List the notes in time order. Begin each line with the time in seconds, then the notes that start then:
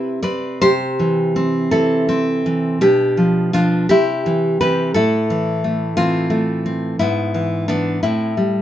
Already playing: C3 C4 E4 G4 B4
0.23 C4 B4 D5
0.62 C3 G4 C5
1.00 E3
1.36 C4
1.71 E3 E4 A4
2.09 C4
2.46 E3
2.81 B2 D4 G4
3.17 F3
3.53 F3 D4 F4
3.89 C3 E4 G4
4.26 E3
4.61 E3 C4 G4 B4
4.94 A2 E4 A4
5.30 E3
5.64 A3
5.97 E3 C4 F4
6.30 A3
6.66 C4
6.99 G#2 B3 E4
7.34 E3
7.68 E3 B3 D4
8.03 A2 C4 E4
8.37 G3